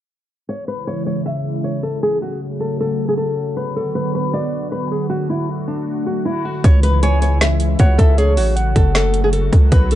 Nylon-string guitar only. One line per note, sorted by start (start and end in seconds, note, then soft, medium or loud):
0.49 0.66 C#5 medium
0.68 0.85 B4 medium
0.87 1.05 C#5 medium
1.06 1.24 C#5 medium
1.26 1.62 E5 medium
1.64 1.81 C#5 medium
1.83 2.01 A4 medium
2.03 2.20 G#4 loud
2.22 2.39 F#4 medium
2.60 2.78 A4 medium
2.80 3.07 A4 medium
3.08 3.17 G#4 medium
3.17 3.54 A4 medium
3.57 3.74 B4 medium
3.76 3.93 A4 medium
3.95 4.12 B4 medium
4.15 4.32 B4 medium
4.33 4.70 D5 medium
4.72 4.89 B4 medium
4.91 5.09 G#4 medium
5.10 5.27 F#4 loud
5.30 5.47 E4 medium
5.68 6.04 D4 medium
6.06 6.24 F#4 medium
6.25 6.43 E4 medium
6.45 6.62 F#4 medium
6.64 6.82 C#5 loud
6.83 7.01 B4 medium
7.03 7.20 C#5 medium
7.22 7.39 C#5 medium
7.41 7.77 E5 medium
7.80 7.97 C#5 medium
7.98 8.16 A4 medium
8.18 8.35 G#4 loud
8.37 8.55 F#4 medium
8.76 8.93 A4 medium
8.96 9.23 A4 medium
9.24 9.32 G#4 medium
9.33 9.69 A4 medium
9.72 9.89 B4 medium
9.92 9.95 A4 medium